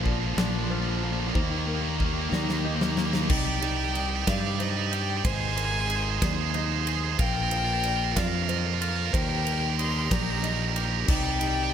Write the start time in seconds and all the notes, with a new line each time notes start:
Already playing: A#1 A#2 D3 F3 A#3 F4 A#4
0.02 A#2 F3 A#3 D5, kick
0.11 A#2 F3
0.19 A#2 F3
0.27 A#2 F3
0.34 A#1 A#2 F3
0.38 A#2 D4 D5, snare
0.43 F3
0.49 A#2 F3
0.57 A#2 F3
0.65 A#2 F3
0.70 A#2 F3 F4 C5
0.81 A#2 F3
0.89 A#2 F3
0.96 A#2 F3
1.04 A#2 F3 A#3
1.12 A#2 F3
1.19 A#2 F3
1.27 A#2 F3
1.35 D#2 D#3 G3 A#3 G4 C5, kick
1.42 D#3 A#3
1.50 D#3 A#3
1.57 D#3 A#3
1.66 D#3 A#3 A#4
1.74 D#3 A#3
1.81 D#3 A#3
1.89 D#3 A#3
1.97 D#3 A#3, kick
2.01 A#3
2.05 D#3 A#3
2.13 D#3 A#3
2.20 D#3 A#3
2.29 D#2 D#3 A#3 D5, snare
2.33 D#3 D#4
2.37 A#3
2.43 D#3 A#3
2.49 D#3, snare
2.53 A#3
2.59 D#3 A#3
2.64 D#3 A#3 G4 D#5
2.75 D#3 A#3
2.81 D#3 A#3, snare
2.91 D#3 A#3
2.97 D#3 A#3, snare
3.06 D#3 A#3
3.13 D#3 A#3, snare
3.23 D#3 A#3
3.29 C2 C3 D#3 G3 D#4 G4 D5 G5, kick, crash
3.37 G4 D5
3.45 G4 D5
3.53 G4 D5
3.60 G3 D#4 G4 D5, ride
3.68 G4 D5
3.77 G4 D5
3.84 G4 D5
3.92 D#4 G4 D5, ride
4.00 G4 D5
4.07 G4 D5
4.16 G4 D5
4.22 G4 D5
4.27 G2 G4 D5 F5, kick, snare, ride
4.31 G4 D5
4.38 G4 D5
4.46 G4 D5
4.54 G4 D5
4.59 D#4 G4 C5 D#5, ride
4.63 D5
4.69 G4 D5
4.77 G4 D5
4.86 G4 D5
4.91 G4 D5 G5, ride
5.01 G4 D5
5.09 G4 D5
5.16 G4 D5
5.23 G#1 C3 D#3 G#3 A#3 D#4 G#4 C5 G#5, kick, ride
5.32 G#4 C5
5.40 G#4 C5
5.48 G#4 C5
5.56 A#3 G#4 A#4 C5, ride
5.65 G#4 C5
5.72 G#4 C5
5.80 G#4 C5
5.87 D#4 G#4 C5, ride
5.95 G#4 C5
6.03 G#4 C5
6.10 G#4 C5
6.18 D#2 G#4 C5 D5, kick, snare, ride
6.26 G#4 C5
6.33 G#4 C5
6.42 G#4 C5
6.50 G#4 C5
6.54 D#4 G#4 C5 D#5, ride
6.65 G#4 C5
6.72 G#4 C5
6.80 G#4 C5
6.87 G#4 C5, ride
6.97 G#4 C5
7.04 G#4 C5
7.11 G#4 C5
7.18 A#1 A#2 D3 F3 A#3 F4 A#4 F5 G5, kick, ride
7.26 F4 A#4
7.33 F4 A#4
7.41 F4 A#4
7.49 F3 F4 A#4 F5, ride
7.58 F4 A#4
7.64 F4 A#4
7.73 F4 A#4
7.81 F4 A#4 D5, ride
7.88 F4 A#4
7.96 F4 A#4
8.04 F4 A#4
8.12 F4 A#4
8.16 F2 F4 D5 F5, kick, snare, ride
8.20 A#4
8.28 F4 A#4
8.35 F4 A#4
8.43 F4 A#4
8.48 F4 A#4 C5 D#5, ride
8.58 F4 A#4
8.66 F4 A#4
8.74 F4 A#4
8.81 F4 A#4 F5, ride
8.89 F4 A#4
8.97 F4 A#4
9.05 F4 A#4
9.13 D#2 A#2 D#3 G3 D#4 G4 A#4 C5 G5, kick, ride
9.21 G4 A#4
9.29 G4 A#4
9.36 G4 A#4
9.43 A#3 G4 A#4, ride
9.50 G4 A#4
9.60 G4 A#4
9.66 G4 A#4
9.75 G4 A#4 C6
9.79 D#4 G4, ride
9.85 A#4
9.91 G4 A#4
9.98 G4 A#4
10.05 G4 A#4
10.10 A#1 G4 D5 A#5, kick, snare, ride
10.15 A#4
10.22 G4 A#4
10.29 G4 A#4
10.37 G4 A#4
10.43 D#4 G4 A#4 D#5, ride
10.52 G4 A#4
10.60 G4 A#4
10.68 G4 A#4
10.75 G4 A#4, ride
10.84 G4 A#4
10.90 G4 A#4
11.00 G4 A#4
11.07 C2 C3 D#4 G4 D5 G5, kick, crash
11.16 G4 D5
11.22 G4 D5
11.31 G4 D5
11.39 G3 D#4 G4 D5, ride
11.47 G4 D5
11.55 G4 D5
11.63 G4 D5
11.70 G4